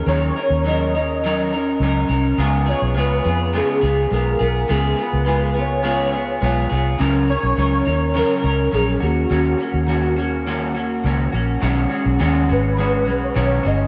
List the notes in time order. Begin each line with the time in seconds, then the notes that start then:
0.06 D#2 D#3 F#3 C#4 D#4 A#4 C#5
0.36 C#4 D#4 A#4
0.50 D#2
0.64 F#3 C#4 D#4 A#4 D#5
0.95 C#4 D#4 A#4
1.24 D#3 F#3 C#4 D#4 A#4
1.53 C#4 D#4 A#4
1.80 C#2 F#3 C#4 D#4
1.84 A#4
2.09 C2 C#4 D#4 A#4
2.38 C#2 C#3 G#3 B3 F4 G#4
2.66 B3 F4 G#4 C#5
2.82 B1
2.94 C#2 G#3 B3 F4 G#4 B4
3.24 F2 B3 F4 G#4
3.53 C#3 G#3 B3 F4 G#4
3.81 C#2 B3 F4 G#4
4.11 B1 G#3 B3 F4 G#4 A#4
4.39 B1 B3 F4 G#4
4.68 C#2 C#3 G#3 B3 F4 G#4
4.96 B3 F4 G#4
5.01 B4
5.13 C#2
5.25 G#3 B3 F4 G#4
5.54 B3 F4 G#4
5.59 C#5
5.83 C#3 G#3 B3 F4 G#4
6.12 B3 F4 G#4
6.41 B1 G#3 B3 F4 G#4
6.69 C2 B3 F4 G#4
6.98 C#2 C#3 F#3 C#4 D#4 A#4
7.28 C#4 D#4 A#4 C#5
7.43 B1
7.56 C#2 F#3 C#4 D#4 A#4
7.85 D#2 C#4 D#4 A#4
8.14 C#3 F#3 C#4 D#4 A#4
8.42 C#2 C#4 D#4 A#4
8.71 A#1 F#3 C#4 D#4 G#4 A#4
9.00 D#2 A#3 C#4 F#4
9.30 D#2 D#3 A#3 C#4 F#4
9.58 A#3 C#4 F#4
9.74 D#2
9.87 D#3 A#3 C#4 F#4
10.16 A#3 C#4 F#4
10.47 D#3 A#3 C#4 F#4
10.74 A#3 C#4 F#4
11.04 C#2 D#3 A#3 C#4 F#4
11.32 A#1 A#3 C#4 F#4
11.61 B1 B2 D#3 G#3 C#4 F#4
11.89 G#3 C#4 F#4
12.06 B1
12.19 D#2 B2 D#3 G#3 C#4 F#4
12.48 G#1 G#3 C#4 F#4 B4
12.77 D#3 G#3 C#4 F#4
13.05 B1 G#3 C#4 F#4
13.23 C#5
13.34 B1 B2 D#3 G#3 C#4 F#4
13.63 G1 G#3 C#4 F#4 D#5